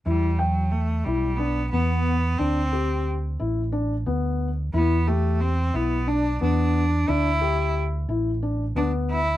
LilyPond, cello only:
\new Staff \with { instrumentName = "Cello" } { \time 7/8 \key e \minor \tempo 4 = 90 g8 fis8 a8 g8 b8 b4 | c'4 r2 r8 | b8 a8 c'8 b8 d'8 d'4 | e'4 r4. d'8 e'8 | }